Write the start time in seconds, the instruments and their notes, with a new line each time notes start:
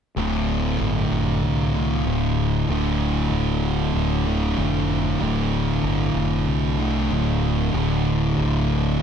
0.17 fingered electric bass D1, distorted electric guitar D2 A2 D3
0.80 fingered electric bass G1
1.11 fingered electric bass F1
1.43 fingered electric bass C2
1.74 distorted electric guitar D2 A2 D3
2.06 fingered electric bass D1, distorted electric guitar D2 A2 D3
2.68 fingered electric bass D1, distorted electric guitar D2 A2 D3
3.31 fingered electric bass D1
3.94 fingered electric bass D1
4.26 distorted electric guitar D2 A2 D3
4.57 fingered electric bass F1, distorted electric guitar D2 A2 D3
5.20 fingered electric bass D1, distorted electric guitar D2 A2 D3
5.83 fingered electric bass G1
6.14 fingered electric bass F1
6.48 fingered electric bass C2
6.79 distorted electric guitar D2 A2 D3
7.10 fingered electric bass D1, distorted electric guitar D2 A2 D3
7.73 fingered electric bass D1, distorted electric guitar D2 A2 D3
8.38 fingered electric bass D1